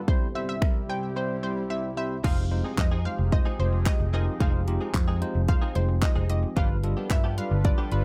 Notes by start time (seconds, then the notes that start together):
0.08 C2 C3 G3 C4 E4 G4 C5, kick
0.35 G3 C4 E4 C5 E5
0.49 E5
0.62 G3 C4 E4 A#4, finger snap, kick
0.89 G3 C4 E4 C5 G5
1.16 G3 C4 E4 C5
1.43 G3 C4 E4 C5
1.70 G3 C4 E4 C5 E5
1.97 G3 C4 E4 C5 E5
2.24 F1 F3 G#3 C4 D#4 F4 G4 G#4 C5 F5, kick, crash
2.37 muted clean electric guitar stroke
2.51 G#3 D#4 F4 C5, muted clean electric guitar stroke
2.64 G#3 C4 D#4 G#4
2.78 F2 G#3 D#4 F4 C5 D#5, kick, clap
2.91 G#3 C4 D#4 G#4
3.05 G#3 D#4 F4 C5 F5, muted clean electric guitar stroke
3.19 F1, muted clean electric guitar stroke
3.32 G#3 D#4 F4 C5 D#5, muted clean electric guitar stroke, kick
3.45 G#3 C4 D#4 G#4
3.59 F1 G#3 D#4 F4 C5, muted clean electric guitar stroke
3.73 muted clean electric guitar stroke
3.86 G#3 D#4 F4 G4 D#5, kick, clap
4.00 F1, muted clean electric guitar stroke
4.13 G#3 C4 D#4 F4 G#4 A#4 D#5
4.27 muted clean electric guitar stroke
4.40 F1 G#3 C4 D#4 F4 G#4 C5 F5, kick, closed hi-hat
4.54 muted clean electric guitar stroke
4.67 G#3 D#4 F4 G4, muted clean electric guitar stroke, closed hi-hat
4.81 G#3 C4 D#4 G#4
4.94 F2 G#3 D#4 F4 C5, kick, clap, closed hi-hat
5.08 G#3 C4 D#4 G#4
5.21 G#3 D#4 F4 C5, muted clean electric guitar stroke, closed hi-hat
5.35 F1, muted clean electric guitar stroke
5.48 G#3 D#4 F4 C5 F5, muted clean electric guitar stroke, kick, closed hi-hat
5.62 G#3 C4 D#4 G#4
5.75 F1 G#3 D#4 F4 C5, muted clean electric guitar stroke, closed hi-hat
5.89 muted clean electric guitar stroke
6.02 G#3 D#4 F4 C5 D#5, muted clean electric guitar stroke, kick, clap, closed hi-hat
6.16 F1 G#3 C4 D#4 G#4
6.29 G#3 D#4 F4 G4 D#5, muted clean electric guitar stroke, closed hi-hat
6.43 muted clean electric guitar stroke
6.56 G1 F3 G3 B3 D4 F4 G4 A4 B4 F5, kick, closed hi-hat
6.70 muted clean electric guitar stroke
6.83 G3 D4 F4 A4, muted clean electric guitar stroke, closed hi-hat
6.97 F3 B3 D4 G4
7.10 G2 G3 D4 F4 B4 E5, muted clean electric guitar stroke, kick, clap, closed hi-hat
7.24 F3 B3 D4 G4
7.38 G3 D4 F4 B4 F5, muted clean electric guitar stroke, closed hi-hat
7.51 G1, muted clean electric guitar stroke
7.65 G3 D4 F4 B4 D5, muted clean electric guitar stroke, kick, closed hi-hat
7.78 F3 B3 D4 G4
7.92 G1 G3 D4 F4 B4, muted clean electric guitar stroke, closed hi-hat